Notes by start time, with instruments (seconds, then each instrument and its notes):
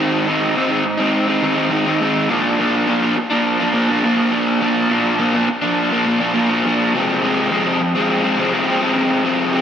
Already playing: overdriven electric guitar G#2 D#3 G#3
0.00 overdriven electric guitar C4 D#4
0.27 overdriven electric guitar D#3 G#3 C4 D#4
0.55 overdriven electric guitar G#2 D#3 G#3 C4 D#4
0.69 overdriven electric guitar G#3 C4 D#4
0.85 muted overdriven electric guitar stroke
0.97 overdriven electric guitar G#3 C4 D#4
1.28 overdriven electric guitar G#3 C4 D#4
1.42 overdriven electric guitar D#3 G#3 C4 D#4
1.56 overdriven electric guitar G#3 C4 D#4
1.70 overdriven electric guitar G#2 D#3 G#3 C4 D#4
1.85 overdriven electric guitar G#3 C4 D#4
2.00 overdriven electric guitar D#3 G#3 C4 D#4
2.29 overdriven electric guitar A#2 F3 A#3 D4
2.59 overdriven electric guitar A#2 F3 A#3 D4
2.87 overdriven electric guitar A#2 F3 A#3 D4
3.02 overdriven electric guitar F3 A#3 D4
3.17 muted overdriven electric guitar stroke
3.30 overdriven electric guitar F3 A#3 D4
3.60 overdriven electric guitar F3 A#3 D4
3.73 overdriven electric guitar A#2 F3 A#3 D4
3.89 overdriven electric guitar F3 A#3 D4
4.04 overdriven electric guitar A#2 F3 A#3 D4
4.17 overdriven electric guitar F3 A#3 D4
4.31 overdriven electric guitar A#2 F3 A#3 D4
4.61 overdriven electric guitar A#2 F3 A#3 D4
4.90 overdriven electric guitar A#2 F3 A#3 D4
5.19 overdriven electric guitar A#2 F3 A#3 D4
5.34 overdriven electric guitar F3 A#3 D4
5.48 muted overdriven electric guitar stroke
5.62 overdriven electric guitar F3 A#3 D4
5.91 overdriven electric guitar F3 A#3 D4
6.06 overdriven electric guitar A#2 F3 A#3 D4
6.20 overdriven electric guitar F3 A#3 D4
6.34 overdriven electric guitar A#2 F3 A#3 D4
6.49 overdriven electric guitar F3 A#3 D4
6.64 overdriven electric guitar A#2 F3 A#3 D4
6.94 overdriven electric guitar F2 C3 F3 G#3 C4
7.23 overdriven electric guitar C3 F3 G#3 C4
7.52 overdriven electric guitar F2 C3 F3 G#3 C4
7.66 overdriven electric guitar F3 G#3 C4
7.81 muted overdriven electric guitar stroke
7.95 overdriven electric guitar F3 G#3 C4
8.24 overdriven electric guitar F3 G#3 C4
8.38 overdriven electric guitar C3 F3 G#3 C4
8.53 overdriven electric guitar F3 G#3 C4
8.67 overdriven electric guitar F2 C3 F3 G#3 C4
8.81 overdriven electric guitar F3 G#3 C4
8.96 overdriven electric guitar C3 F3 G#3 C4
9.23 overdriven electric guitar F2 C3 F3 G#3 C4
9.53 overdriven electric guitar C3 F3 G#3 C4